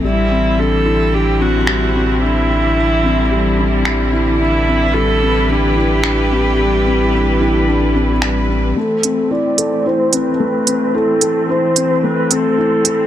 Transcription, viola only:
X:1
M:4/4
L:1/8
Q:1/4=110
K:Am
V:1 name="Viola"
E2 A2 G ^F3 | E6 z2 | E2 A2 G4- | G6 z2 |
A2 d2 c B3 | A2 c2 B A3 |]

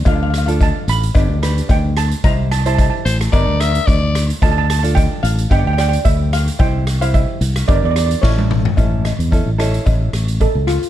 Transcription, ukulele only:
X:1
M:4/4
L:1/16
Q:"Swing 16ths" 1/4=110
K:Aphr
V:1 name="Ukulele"
[DFA]2 z [DFA]4 z [DG=B]2 [DGB]4 z2 | [EGc]2 z [EGc]3 z2 [DGB]4- [DGB] z3 | [DFA]2 z [DFA]4 z [DG=B]2 [DGd]4 z2 | [EGc]2 z [EGc]3 z2 [DGB]4 [^CEA]3 z |
[^CEA]2 z2 [CEA] z [CEA]4- [CEA] z4 z |]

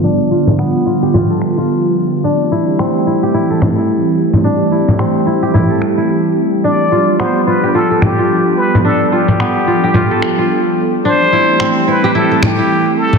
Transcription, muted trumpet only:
X:1
M:4/4
L:1/8
Q:"Swing 16ths" 1/4=109
K:Gmix
V:1 name="Muted trumpet"
z8 | z8 | z8 | d2 c B A G2 B |
A G6 z | c3 B A G2 A |]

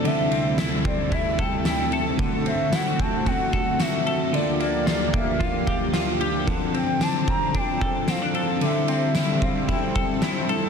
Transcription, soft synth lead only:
X:1
M:4/4
L:1/16
Q:1/4=112
K:Dm
V:1 name="Soft synth lead"
e4 z2 d2 e2 g2 g3 z | z2 e2 ^f2 a2 f4 e4 | d2 d2 d2 e2 f6 z2 | z2 g2 a2 b2 g4 f4 |
e2 e4 f2 g6 z2 |]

